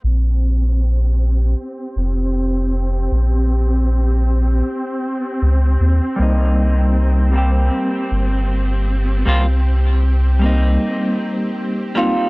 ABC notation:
X:1
M:4/4
L:1/8
Q:"Swing 16ths" 1/4=78
K:Cphr
V:1 name="Synth drone"
G8- | G8- | G8- | G8 |]
V:2 name="Santur"
z8 | z8 | z8 | z6 z F |]
V:3 name="String section"
C8- | C8- | C8- | C8 |]
V:4 name="Clean electric guitar"
z8 | z8 | [G,B,CE]3 [G,B,CG]4- [G,B,CG] | [G,B,CF] z2 [G,B,CE]4 [G,B,CE] |]
V:5 name="Sub bass" clef=bass
B,,,4 z F,,,3 | B,,,4 z2 D,, E,, | C,,4 z G,,,3 | C,,4 z4 |]